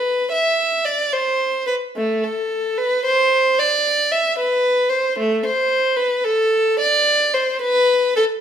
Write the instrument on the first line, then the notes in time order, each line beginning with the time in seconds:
violin
Already playing: B4
0.32 E5
0.85 D5
1.13 C5
1.67 B4
1.97 A3
2.24 A4
2.78 B4
3.05 C5
3.59 D5
4.12 E5
4.38 B4
4.89 C5
5.18 A3
5.46 C5
5.97 B4
6.25 A4
6.80 D5
7.34 C5
7.62 B4
8.16 A4